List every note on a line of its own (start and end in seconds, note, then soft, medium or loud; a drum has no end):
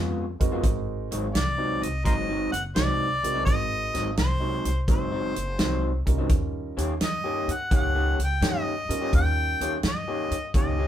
0.00 0.39 F2 medium
0.00 0.24 C#3 medium
0.00 0.24 G#3 medium
0.00 0.24 B3 medium
0.00 0.25 F4 medium
0.40 0.63 F2 medium
0.40 1.30 G#3 medium
0.40 1.29 C4 medium
0.40 1.30 D#4 medium
0.40 1.30 F#4 medium
0.40 1.30 A#4 medium
0.40 kick medium
0.40 closed hi-hat medium
0.52 0.64 C#3 medium
0.52 0.64 G#3 medium
0.52 0.64 B3 medium
0.52 0.64 F4 medium
0.63 1.10 G#1 medium
0.63 kick loud
0.63 closed hi-hat medium
1.11 1.34 G#1 medium
1.11 1.26 G#2 medium
1.11 1.26 F#3 medium
1.11 1.27 C4 medium
1.11 1.27 D#4 medium
1.11 closed hi-hat medium
1.35 1.81 C2 medium
1.35 1.84 D5 medium
1.35 snare loud
1.35 closed hi-hat medium
1.58 1.86 G#2 medium
1.58 1.86 F#3 medium
1.58 1.86 C4 medium
1.58 1.86 D#4 medium
1.82 2.04 C2 medium
1.82 2.05 D#5 medium
1.82 closed hi-hat medium
2.04 2.52 F#1 medium
2.04 2.28 G#2 medium
2.04 2.28 F#3 medium
2.04 2.28 C4 medium
2.04 2.27 D#4 medium
2.04 2.14 A#4 medium
2.04 2.14 C5 medium
2.04 2.50 D#5 medium
2.04 kick loud
2.04 closed hi-hat medium
2.29 2.51 G#2 medium
2.29 2.52 F#3 medium
2.29 2.52 C4 medium
2.29 2.52 D#4 loud
2.52 2.75 F#1 medium
2.52 2.63 F#5 loud
2.52 muted clean electric guitar stroke soft
2.52 closed hi-hat medium
2.75 3.23 C2 medium
2.75 3.07 G#2 medium
2.75 3.07 F#3 medium
2.75 3.07 C4 medium
2.75 3.07 D#4 medium
2.75 3.43 D5 loud
2.75 snare loud
2.75 closed hi-hat medium
3.23 3.46 C2 medium
3.23 4.12 G#3 medium
3.23 4.13 C4 medium
3.23 4.13 D#4 medium
3.23 4.13 F#4 medium
3.23 4.13 A#4 medium
3.23 closed hi-hat medium
3.35 3.54 G#2 medium
3.35 3.54 F#3 medium
3.35 3.54 C4 medium
3.35 3.54 D#4 medium
3.45 3.93 G#1 medium
3.45 4.13 D#5 loud
3.45 kick loud
3.45 closed hi-hat medium
3.94 4.17 G#1 medium
3.94 4.09 G#2 medium
3.94 4.09 F#3 medium
3.94 4.10 C4 medium
3.94 4.10 D#4 medium
3.94 snare soft
3.94 closed hi-hat medium
4.17 4.64 C2 medium
4.17 4.85 C5 medium
4.17 snare loud
4.17 closed hi-hat medium
4.40 4.69 G#2 medium
4.40 4.69 F#3 medium
4.40 4.69 C4 medium
4.40 4.68 D#4 medium
4.65 4.87 C2 medium
4.65 closed hi-hat medium
4.88 5.34 F#1 medium
4.88 5.11 G#2 medium
4.88 5.11 F#3 medium
4.88 5.11 C4 medium
4.88 5.10 D#4 medium
4.88 6.04 C5 medium
4.88 kick loud
4.88 closed hi-hat medium
5.12 5.35 G#2 medium
5.12 5.35 F#3 medium
5.12 5.36 C4 medium
5.12 5.36 D#4 medium
5.36 5.58 F#1 medium
5.36 muted clean electric guitar stroke soft
5.36 closed hi-hat medium
5.58 6.05 C2 medium
5.58 5.90 G#2 medium
5.58 5.90 F#3 medium
5.58 5.90 C4 medium
5.58 5.90 D#4 medium
5.58 snare loud
5.58 closed hi-hat medium
6.06 6.29 C2 medium
6.06 6.95 G3 medium
6.06 6.96 C#4 medium
6.06 6.96 D#4 medium
6.06 6.96 F4 medium
6.06 6.96 A#4 medium
6.06 kick medium
6.06 closed hi-hat medium
6.18 6.30 G#2 medium
6.18 6.30 F#3 medium
6.18 6.30 C4 medium
6.18 6.30 D#4 medium
6.29 6.76 D#2 medium
6.29 kick loud
6.29 closed hi-hat medium
6.77 7.00 D#2 medium
6.77 6.92 D#3 medium
6.77 6.92 A#3 medium
6.77 6.92 C#4 medium
6.77 6.93 G4 medium
6.77 closed hi-hat medium
7.00 7.47 G2 medium
7.00 7.54 D#5 medium
7.00 snare loud
7.00 closed hi-hat medium
7.24 7.52 D#3 medium
7.24 7.52 A#3 medium
7.24 7.52 C#4 medium
7.24 7.52 G4 medium
7.48 7.70 G2 medium
7.48 closed hi-hat medium
7.52 7.73 F#5 medium
7.71 8.18 C#2 medium
7.71 7.94 D#3 medium
7.71 7.94 A#3 medium
7.71 7.94 C#4 medium
7.71 7.93 G4 medium
7.71 kick loud
7.71 closed hi-hat medium
7.76 8.18 F#5 medium
7.95 8.18 D#3 medium
7.95 8.18 A#3 medium
7.95 8.18 C#4 medium
7.95 8.19 G4 medium
8.19 8.41 C#2 medium
8.19 muted clean electric guitar stroke soft
8.19 closed hi-hat medium
8.24 8.47 G5 loud
8.41 8.88 G2 medium
8.41 8.73 D#3 medium
8.41 8.73 A#3 medium
8.41 8.74 C#4 medium
8.41 8.74 G4 medium
8.41 snare loud
8.41 closed hi-hat medium
8.46 9.15 D#5 medium
8.89 9.12 G2 medium
8.89 9.79 G3 medium
8.89 9.79 C#4 medium
8.89 9.79 D#4 medium
8.89 9.79 F4 medium
8.89 9.79 A#4 medium
8.89 closed hi-hat medium
9.02 9.21 D#3 medium
9.02 9.20 A#3 medium
9.02 9.20 C#4 medium
9.02 9.20 G4 medium
9.13 9.59 D#2 medium
9.13 9.81 G5 loud
9.13 kick loud
9.13 closed hi-hat medium
9.61 9.83 D#2 medium
9.61 9.76 D#3 medium
9.61 9.76 A#3 medium
9.61 9.76 C#4 medium
9.61 9.76 G4 medium
9.61 closed hi-hat medium
9.83 10.30 G2 medium
9.83 snare loud
9.83 closed hi-hat medium
9.87 10.52 D#5 medium
10.08 10.36 D#3 medium
10.08 10.35 A#3 medium
10.08 10.35 C#4 medium
10.08 10.35 G4 medium
10.31 10.53 G2 medium
10.31 closed hi-hat medium
10.54 10.88 C#2 medium
10.54 10.78 D#3 medium
10.54 10.78 A#3 medium
10.54 10.78 C#4 medium
10.54 10.77 G4 medium
10.54 10.88 D#5 medium
10.54 kick loud
10.54 closed hi-hat medium
10.79 10.88 D#3 medium
10.79 10.88 A#3 medium
10.79 10.88 C#4 medium
10.79 10.88 G4 loud